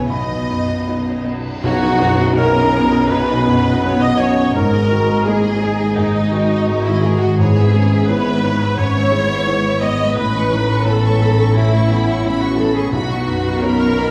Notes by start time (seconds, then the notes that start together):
Already playing: A2 E3 B3 E4 C#5 E5 F#5 G#5 C#6
0.08 B1 B2 B3 D#4 D#5 B5
0.29 F#3
0.48 F#2 B3
0.67 F#4
0.88 B3 D#4 B4
1.26 B3 D#5
1.45 C#6
1.62 B1 B2 C#4 D#4 F#4 C#5 D#5 F#5, tam-tam
1.81 F#3 D#5
2.00 F#2 C#4 C#5
2.19 D#5
2.35 C#4 D#4 A#4 C#5 D#5 A#5
2.53 C#5 D#5
2.72 C#4 E4 C#5 D#5
2.90 D#5 D#6
3.08 B1 D#4 B4 C#5 D#5 B5
3.28 C#5 D#5
3.43 F#2 B3 C#5 D#5
3.64 D#5
3.82 F#3 C#4 D#4 C#5 D#5
4.01 D#5 D#6
4.18 F#3 C#4 C#5 C#6
4.37 C#4 D#5
4.53 G#1 G#2 G#3 D#4 A#4 A#5
4.73 D#5
4.89 D#3 G#3 F#4 A#4
5.07 A#3 D#5
5.24 G#3 A#3 E4 G#4 A#4 D#5 G#5
5.43 G#4 D#5
5.60 G#3 D#4 A#4 D#5
5.78 D#5 D#6
5.95 G#2 D#4 G#4 A#4 D#5
6.14 G#4 D#5
6.32 D#3 F#4 A#4 D#5
6.50 D#4 D#5
6.67 D#3 G#3 D#4 A#4 D#5
6.84 G#3 E4 D#5 E5
7.01 D#3 G#3 G#4 A#4 G#5
7.19 G#3 F#4 D#5 F#5
7.38 G#2 E3 B3 E4 G#4 C#5 G#5
7.56 G#3 E5
7.73 G#3 B3 C#4 C#5
7.91 C#4 E5
8.08 B3 E4 B4 C#5 B5
8.27 E5
8.42 B3 D#4 C#5
8.60 E5 C#6
8.77 G#2 C#4 C#5 C#6
8.97 E5
9.12 G#3 E4 C#5
9.31 E5
9.47 G#3 B3 E4 C#5
9.64 B3 E5
9.81 G#3 B3 C#5 D#5 D#6
9.99 B3 E5
10.16 A1 A2 C#4 E4 B4 B5
10.34 E3 C#6
10.50 E3 B3 D#4 B5
10.70 C#6
10.85 B3 C#4 E4 A4 C#5 A5 B5
11.05 C#6
11.20 B3 D#4 B5
11.39 C#6
11.55 A2 C#4 E4 E5 B5
11.75 C#6
11.89 E3 B3 C#5 B5
12.08 E4 C#6
12.24 E3 B3 C#4 E4 C#5 B5
12.40 B3 F#4 F#5 C#6
12.57 E3 B3 A4 A5 B5
12.74 G#4 G#5 C#6
12.92 B1 B2 C#4 D#4 F#4 D#5 F#5 B5
13.09 F#3 C#6
13.27 F#2 B3 B5
13.44 C#4 C#6
13.61 B3 D#4 A#4 C#5 A#5 B5
13.79 F#4 C#6
13.96 B3 D#5 B5